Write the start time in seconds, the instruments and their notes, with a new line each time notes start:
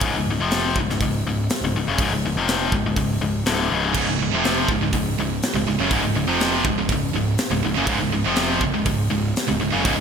0.00 picked electric bass C#1, kick, open hi-hat
0.04 distorted electric guitar C#2 G#2
0.14 picked electric bass C#1, distorted electric guitar C#2 G#2
0.27 picked electric bass C#1, distorted electric guitar C#2
0.31 distorted electric guitar G#2
0.40 picked electric bass F1, distorted electric guitar F2 C3 F3
0.51 snare, open hi-hat
0.76 picked electric bass C#1, distorted electric guitar C#2 G#2, kick
0.88 picked electric bass C#1, distorted electric guitar C#2 G#2, snare
1.01 picked electric bass C#1, distorted electric guitar C#2 G#2, kick, open hi-hat
1.25 picked electric bass C#1, distorted electric guitar C#2 G#2
1.50 snare, open hi-hat
1.61 picked electric bass C#1, distorted electric guitar C#2 G#2
1.75 picked electric bass C#1, distorted electric guitar C#2 G#2
1.87 picked electric bass F#1, distorted electric guitar F#2 C#3
1.98 picked electric bass C#1, distorted electric guitar C#2, kick, open hi-hat
2.03 distorted electric guitar G#2
2.10 picked electric bass C#1, distorted electric guitar C#2 G#2
2.25 picked electric bass C#1, distorted electric guitar C#2 G#2
2.36 picked electric bass F1, distorted electric guitar F2 C3 F3
2.48 snare, open hi-hat
2.72 picked electric bass C#1, distorted electric guitar C#2 G#2, kick
2.86 picked electric bass C#1, distorted electric guitar C#2 G#2
2.96 picked electric bass C#1, distorted electric guitar C#2 G#2, kick, open hi-hat
3.21 picked electric bass C#1, distorted electric guitar C#2 G#2
3.46 picked electric bass D1, distorted electric guitar D2 A2 D3, snare, open hi-hat
3.71 picked electric bass C#1, distorted electric guitar C#2 G#2 C#3
3.95 picked electric bass C#1, distorted electric guitar C#2 G#2, kick, crash
4.09 picked electric bass C#1, distorted electric guitar C#2 G#2
4.21 picked electric bass C#1, distorted electric guitar C#2 G#2
4.33 picked electric bass F1, distorted electric guitar F2 C3 F3
4.44 snare, open hi-hat
4.68 picked electric bass C#1, distorted electric guitar C#2 G#2, kick
4.81 picked electric bass C#1, distorted electric guitar C#2 G#2
4.93 picked electric bass C#1, distorted electric guitar C#2 G#2, kick, open hi-hat
5.18 picked electric bass C#1, distorted electric guitar C#2 G#2
5.42 snare, open hi-hat
5.54 picked electric bass C#1, distorted electric guitar C#2 G#2
5.67 picked electric bass C#1, distorted electric guitar C#2 G#2
5.79 picked electric bass F#1, distorted electric guitar F#2 C#3
5.91 picked electric bass C#1, distorted electric guitar C#2 G#2, kick, open hi-hat
6.03 picked electric bass C#1, distorted electric guitar C#2 G#2
6.14 picked electric bass C#1, distorted electric guitar C#2 G#2
6.27 picked electric bass F1, distorted electric guitar F2 C3 F3
6.40 snare, open hi-hat
6.65 picked electric bass C#1, distorted electric guitar C#2 G#2, kick
6.76 picked electric bass C#1, distorted electric guitar C#2 G#2
6.89 picked electric bass C#1, distorted electric guitar C#2 G#2, kick, open hi-hat
7.12 picked electric bass C#1, distorted electric guitar C#2 G#2
7.38 snare, open hi-hat
7.50 picked electric bass C#1, distorted electric guitar C#2 G#2
7.64 picked electric bass C#1, distorted electric guitar C#2 G#2
7.77 picked electric bass F#1, distorted electric guitar F#2 C#3
7.87 picked electric bass C#1, distorted electric guitar C#2 G#2, kick, open hi-hat
8.00 picked electric bass C#1, distorted electric guitar C#2 G#2
8.12 picked electric bass C#1, distorted electric guitar C#2 G#2
8.26 picked electric bass F1, distorted electric guitar F2 C3 F3
8.36 snare, open hi-hat
8.61 picked electric bass C#1, distorted electric guitar C#2 G#2, kick
8.74 picked electric bass C#1, distorted electric guitar C#2 G#2
8.85 picked electric bass C#1, distorted electric guitar C#2 G#2, kick, open hi-hat
9.10 picked electric bass C#1, distorted electric guitar C#2 G#2
9.36 snare, open hi-hat
9.48 picked electric bass C#1, distorted electric guitar C#2 G#2
9.61 picked electric bass C#1, distorted electric guitar C#2 G#2
9.72 picked electric bass F#1, distorted electric guitar F#2 C#3
9.85 picked electric bass C#1, distorted electric guitar C#2 G#2, kick, open hi-hat
9.97 distorted electric guitar C#2 G#2